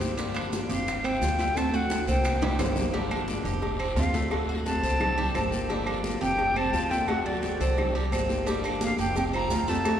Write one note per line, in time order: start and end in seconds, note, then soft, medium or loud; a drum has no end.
0.00 0.64 G1 medium
0.00 0.17 D#3 medium
0.00 0.18 A#3 medium
0.00 0.17 C4 medium
0.00 0.17 G4 medium
0.00 high bongo soft
0.00 high conga medium
0.00 high timbale medium
0.00 short guiro medium
0.00 maracas soft
0.16 0.85 D3 medium
0.16 0.86 F3 medium
0.16 0.34 G3 medium
0.16 0.87 A#3 medium
0.16 0.87 D4 medium
0.16 0.87 G4 medium
0.16 high bongo medium
0.16 high conga soft
0.16 high timbale medium
0.16 long guiro medium
0.16 maracas medium
0.34 0.68 D4 medium
0.34 high conga soft
0.34 high timbale loud
0.34 claves medium
0.34 maracas soft
0.53 high bongo medium
0.53 high conga loud
0.53 short guiro medium
0.53 maracas medium
0.69 1.18 F1 loud
0.69 1.02 C4 medium
0.69 1.03 G4 medium
0.69 1.06 F5 medium
0.69 high bongo soft
0.69 high conga soft
0.69 short guiro medium
0.69 maracas soft
0.87 muted nylon-string guitar stroke medium
0.87 high bongo medium
0.87 high conga soft
0.87 high timbale medium
0.87 long guiro medium
0.87 maracas medium
1.04 1.55 C4 medium
1.04 1.21 C4 medium
1.04 1.58 G5 medium
1.04 high bongo soft
1.04 high conga soft
1.04 high timbale medium
1.04 claves medium
1.04 maracas soft
1.21 2.02 D2 medium
1.21 1.38 F3 medium
1.21 1.38 G3 medium
1.21 1.39 C4 medium
1.21 1.38 F4 medium
1.21 high bongo soft
1.21 low bongo medium
1.21 high conga medium
1.21 low timbale medium
1.21 short guiro medium
1.21 maracas medium
1.39 1.55 G3 medium
1.39 1.72 A3 medium
1.39 1.55 C4 medium
1.39 1.55 F4 medium
1.39 high bongo soft
1.39 high conga medium
1.39 high timbale medium
1.39 short guiro medium
1.39 maracas soft
1.54 2.24 D3 medium
1.54 2.24 A3 medium
1.54 1.73 C4 loud
1.54 2.24 C4 medium
1.54 2.25 F#4 medium
1.54 1.77 A5 loud
1.54 high bongo medium
1.54 high conga soft
1.54 high timbale loud
1.54 long guiro medium
1.54 claves medium
1.54 maracas medium
1.73 2.08 A3 medium
1.73 2.07 F#4 medium
1.73 2.09 F#5 medium
1.73 high conga soft
1.73 maracas soft
1.90 high bongo medium
1.90 high conga loud
1.90 high timbale medium
1.90 short guiro medium
1.90 maracas medium
2.07 2.56 C2 medium
2.07 2.56 A#3 medium
2.07 2.41 C4 medium
2.07 2.57 G5 medium
2.07 high bongo soft
2.07 high conga soft
2.07 short guiro medium
2.07 maracas soft
2.24 muted nylon-string guitar stroke medium
2.24 high bongo medium
2.24 high conga medium
2.24 high timbale medium
2.24 long guiro medium
2.24 claves medium
2.24 maracas medium
2.42 2.59 G3 medium
2.42 high bongo medium
2.42 high conga loud
2.42 high timbale loud
2.42 maracas soft
2.58 3.40 G1 medium
2.58 2.75 D#3 medium
2.58 2.76 A#3 medium
2.58 2.93 C4 medium
2.58 2.76 C4 medium
2.58 2.75 G4 medium
2.58 low bongo medium
2.58 low conga loud
2.58 high timbale loud
2.58 short guiro medium
2.58 claves medium
2.58 maracas medium
2.76 2.92 D#3 medium
2.76 2.92 A#3 medium
2.76 2.94 C4 medium
2.76 2.93 G4 medium
2.76 low bongo medium
2.76 low conga medium
2.76 low timbale medium
2.76 short guiro medium
2.76 maracas soft
2.92 3.61 D3 medium
2.92 3.61 F3 medium
2.92 3.11 G3 medium
2.92 3.61 A#3 medium
2.92 3.61 D4 medium
2.92 3.62 G4 medium
2.92 cowbell loud
2.92 high conga soft
2.92 low agogo medium
2.92 long guiro medium
3.11 3.45 D4 medium
3.11 high conga soft
3.11 low agogo loud
3.11 claves medium
3.28 cowbell medium
3.28 high conga medium
3.28 short guiro medium
3.44 3.93 F1 medium
3.44 3.79 G4 medium
3.44 high conga soft
3.44 low agogo medium
3.44 short guiro medium
3.62 muted nylon-string guitar stroke medium
3.62 cowbell loud
3.62 high conga soft
3.62 low agogo medium
3.62 long guiro medium
3.79 3.97 C4 medium
3.79 high conga soft
3.79 low agogo loud
3.79 claves medium
3.96 4.77 D2 medium
3.96 4.13 F3 medium
3.96 4.14 G3 medium
3.96 4.62 C4 medium
3.96 4.14 C4 medium
3.96 4.14 F4 medium
3.96 4.12 F4 medium
3.96 4.29 F5 medium
3.96 cowbell medium
3.96 high conga medium
3.96 low timbale medium
3.96 low agogo medium
3.96 short guiro medium
4.13 4.31 G3 medium
4.13 4.48 A3 medium
4.13 4.31 C4 medium
4.13 4.30 F4 medium
4.13 cowbell medium
4.13 high conga medium
4.13 short guiro medium
4.29 4.99 D3 medium
4.29 5.00 A3 medium
4.29 4.99 C4 medium
4.29 4.99 F#4 medium
4.29 cowbell loud
4.29 high conga soft
4.29 low agogo loud
4.29 long guiro medium
4.29 claves medium
4.49 4.83 F#4 medium
4.49 high conga soft
4.66 5.53 C4 medium
4.66 5.53 A5 loud
4.66 cowbell medium
4.66 high conga medium
4.66 low agogo medium
4.66 short guiro medium
4.83 5.31 C2 medium
4.83 5.17 C4 medium
4.83 cowbell medium
4.83 high conga soft
4.83 short guiro medium
4.99 muted nylon-string guitar stroke medium
4.99 cowbell loud
4.99 high conga soft
4.99 low conga medium
4.99 low agogo loud
4.99 long guiro medium
4.99 claves medium
5.18 5.35 G3 medium
5.18 high conga soft
5.18 low conga medium
5.18 low agogo medium
5.34 6.16 G1 medium
5.34 5.51 D#3 medium
5.34 5.51 A#3 medium
5.34 5.69 C4 medium
5.34 5.50 C4 medium
5.34 5.49 G4 medium
5.34 cowbell medium
5.34 high conga loud
5.34 low timbale medium
5.34 low agogo loud
5.34 short guiro medium
5.34 claves medium
5.51 5.69 D#3 medium
5.51 5.68 A#3 medium
5.51 5.69 C4 medium
5.51 5.68 G4 medium
5.51 short guiro medium
5.68 6.37 D3 medium
5.68 6.37 F3 medium
5.68 5.87 G3 medium
5.68 6.38 A#3 medium
5.68 6.39 D4 medium
5.68 6.39 G4 medium
5.68 cowbell loud
5.68 high conga soft
5.68 low agogo medium
5.68 long guiro medium
5.86 6.21 D4 medium
5.86 high conga soft
5.86 low agogo loud
5.86 claves medium
6.04 cowbell medium
6.04 high conga medium
6.04 short guiro medium
6.21 6.70 F1 loud
6.21 6.54 C4 loud
6.21 6.55 G4 medium
6.21 6.59 G5 loud
6.21 high conga soft
6.21 low agogo medium
6.21 short guiro medium
6.38 muted nylon-string guitar stroke medium
6.38 cowbell loud
6.38 high conga soft
6.38 low agogo medium
6.38 long guiro medium
6.56 6.89 C4 loud
6.56 6.73 C4 medium
6.56 6.92 A5 loud
6.56 high conga soft
6.56 low agogo loud
6.56 claves medium
6.73 7.54 D2 medium
6.73 6.90 F3 medium
6.73 6.90 G3 medium
6.73 6.90 C4 medium
6.73 6.90 F4 medium
6.73 6.89 F4 medium
6.73 cowbell medium
6.73 high conga medium
6.73 low agogo medium
6.73 short guiro medium
6.89 7.08 G3 medium
6.89 7.25 A3 medium
6.89 7.08 A#3 medium
6.89 7.08 C4 medium
6.89 7.07 F4 medium
6.89 7.10 G5 loud
6.89 cowbell medium
6.89 high conga medium
6.89 short guiro medium
7.07 7.76 D3 medium
7.07 7.25 A3 loud
7.07 7.77 A3 medium
7.07 7.77 C4 medium
7.07 7.78 F#4 medium
7.07 7.27 F#5 loud
7.07 cowbell loud
7.07 high conga soft
7.07 low agogo loud
7.07 long guiro medium
7.07 claves medium
7.25 7.77 F#3 medium
7.25 7.59 F#4 medium
7.25 7.95 D5 medium
7.25 high conga soft
7.42 cowbell medium
7.42 high conga medium
7.42 low agogo medium
7.42 short guiro medium
7.60 8.08 C2 medium
7.60 7.94 C4 medium
7.60 cowbell medium
7.60 high conga soft
7.60 short guiro medium
7.77 muted nylon-string guitar stroke medium
7.77 cowbell loud
7.77 high conga soft
7.77 low conga medium
7.77 low agogo loud
7.77 long guiro medium
7.77 claves medium
7.95 8.12 G3 medium
7.95 high conga soft
7.95 low agogo medium
8.12 8.93 G1 medium
8.12 8.29 D#3 soft
8.12 8.29 A#3 medium
8.12 8.46 C4 medium
8.12 8.29 C4 medium
8.12 8.28 G4 medium
8.12 cowbell medium
8.12 high conga medium
8.12 low agogo loud
8.12 short guiro medium
8.12 claves medium
8.29 8.46 D#3 medium
8.29 8.46 A#3 medium
8.29 8.46 C4 medium
8.29 8.46 G4 medium
8.29 high conga medium
8.29 short guiro medium
8.45 9.14 D3 medium
8.45 9.15 F3 medium
8.45 8.63 G3 medium
8.45 9.16 A#3 medium
8.45 9.16 D4 medium
8.45 9.16 G4 medium
8.45 cowbell loud
8.45 high conga soft
8.45 low agogo medium
8.45 long guiro medium
8.45 maracas medium
8.64 8.97 D4 medium
8.64 high conga soft
8.64 low agogo loud
8.64 claves medium
8.64 maracas soft
8.81 8.98 A#3 medium
8.81 8.98 F5 medium
8.81 cowbell medium
8.81 high conga loud
8.81 short guiro medium
8.81 maracas medium
8.98 9.47 F1 medium
8.98 9.16 A#3 medium
8.98 9.32 G4 medium
8.98 9.15 G5 medium
8.98 high conga soft
8.98 low agogo medium
8.98 short guiro medium
8.98 maracas soft
9.16 9.22 C4 medium
9.16 9.24 G5 loud
9.16 muted nylon-string guitar stroke medium
9.16 cowbell loud
9.16 high conga soft
9.16 low agogo medium
9.16 long guiro medium
9.16 maracas medium
9.33 9.50 C4 medium
9.33 9.66 F4 loud
9.33 9.71 A#5 loud
9.33 high conga soft
9.33 low agogo loud
9.33 claves medium
9.33 maracas soft
9.50 10.00 D2 medium
9.50 9.67 F3 medium
9.50 9.67 G3 medium
9.50 9.68 C4 medium
9.50 9.67 F4 medium
9.50 9.66 F4 medium
9.50 cowbell medium
9.50 high conga medium
9.50 low timbale medium
9.50 low agogo medium
9.50 short guiro medium
9.50 maracas medium
9.67 9.85 G3 medium
9.67 10.00 A3 medium
9.67 9.85 C4 medium
9.67 10.00 C4 medium
9.67 9.84 F4 medium
9.67 10.00 A5 loud
9.67 cowbell medium
9.67 high conga medium
9.67 short guiro medium
9.67 maracas soft
9.84 10.00 D3 medium
9.84 10.00 A3 medium
9.84 10.00 C4 medium
9.84 10.00 F#4 medium
9.84 cowbell loud
9.84 high conga soft
9.84 low agogo loud
9.84 long guiro medium
9.84 claves medium
9.84 maracas medium